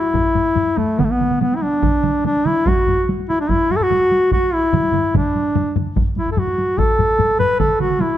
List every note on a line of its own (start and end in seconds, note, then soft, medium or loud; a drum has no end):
0.00 0.79 E4 medium
0.00 taiko high soft
0.14 taiko medium
0.14 taiko low-mid medium
0.14 taiko high soft
0.24 taiko high soft
0.35 taiko low-mid medium
0.35 taiko high medium
0.45 taiko high soft
0.55 taiko low-mid medium
0.55 taiko high medium
0.67 taiko high soft
0.77 1.00 A3 medium
0.77 taiko low-mid medium
0.77 taiko high medium
0.88 taiko high soft
0.99 1.06 B3 medium
0.99 taiko medium
0.99 taiko mid medium
0.99 taiko high medium
1.04 1.13 A3 medium
1.10 1.40 B3 medium
1.10 taiko high soft
1.20 taiko mid medium
1.20 taiko high medium
1.31 taiko mid medium
1.31 taiko high soft
1.41 1.57 B3 medium
1.41 taiko mid medium
1.41 taiko high medium
1.52 1.64 E4 medium
1.52 taiko high soft
1.62 2.25 D4 medium
1.62 taiko high soft
1.73 taiko high soft
1.83 taiko medium
1.83 taiko mid medium
1.83 taiko high medium
2.03 taiko mid medium
2.03 taiko high medium
2.15 taiko high soft
2.24 2.49 D4 medium
2.24 taiko mid medium
2.24 taiko high medium
2.37 taiko high soft
2.45 2.70 E4 medium
2.45 taiko mid medium
2.45 taiko high soft
2.57 taiko high soft
2.66 3.07 F#4 medium
2.66 taiko loud
2.66 taiko low-mid medium
2.66 taiko high medium
2.76 taiko low-mid medium
2.76 taiko high soft
2.87 taiko low-mid medium
2.87 taiko high soft
3.09 taiko high medium
3.20 taiko high soft
3.29 3.38 E4 medium
3.29 taiko high soft
3.40 3.51 D4 medium
3.40 taiko high soft
3.49 3.73 E4 medium
3.49 taiko medium
3.49 taiko low-mid medium
3.49 taiko high medium
3.70 3.78 F#4 medium
3.70 taiko low-mid medium
3.70 taiko high soft
3.76 3.84 A4 medium
3.76 taiko low-mid medium
3.81 4.32 F#4 loud
3.81 taiko high soft
3.91 taiko low-mid medium
3.91 taiko high medium
4.02 taiko high soft
4.12 taiko high soft
4.23 taiko high soft
4.32 4.55 F#4 medium
4.32 taiko medium
4.32 taiko high medium
4.43 taiko high soft
4.53 5.15 E4 medium
4.64 taiko high soft
4.73 taiko low-mid medium
4.73 taiko mid loud
4.73 taiko high medium
4.83 taiko high soft
4.93 taiko low-mid medium
4.93 taiko mid medium
4.93 taiko high soft
5.14 5.73 D4 medium
5.14 taiko medium
5.14 taiko low-mid medium
5.14 taiko mid loud
5.14 taiko high medium
5.25 taiko high soft
5.35 taiko high soft
5.45 taiko high soft
5.55 taiko low-mid medium
5.55 taiko mid medium
5.55 taiko high medium
5.76 taiko low-mid medium
5.76 taiko mid medium
5.76 taiko high medium
5.86 taiko high soft
5.96 taiko medium
5.96 taiko low-mid medium
5.96 taiko high medium
6.16 6.31 E4 medium
6.16 taiko low-mid medium
6.16 taiko high soft
6.26 taiko low-mid medium
6.26 taiko high soft
6.32 6.40 A4 medium
6.37 6.80 F#4 medium
6.37 taiko low-mid medium
6.37 taiko high medium
6.47 taiko high soft
6.58 taiko high soft
6.68 taiko high soft
6.78 7.38 A4 medium
6.78 taiko medium
6.78 taiko low-mid medium
6.78 taiko high medium
6.88 taiko high soft
6.99 taiko low-mid medium
6.99 taiko high medium
7.19 taiko low-mid medium
7.19 taiko high medium
7.29 taiko high soft
7.39 7.58 B4 medium
7.39 taiko low-mid loud
7.39 taiko high soft
7.50 taiko high soft
7.59 7.79 A4 medium
7.59 taiko medium
7.59 taiko mid loud
7.59 taiko high medium
7.70 taiko high soft
7.80 8.02 F#4 medium
7.80 taiko mid medium
7.80 taiko high medium
7.90 taiko mid medium
7.90 taiko high soft
8.00 8.18 E4 medium
8.00 taiko mid loud
8.00 taiko high medium
8.11 taiko high soft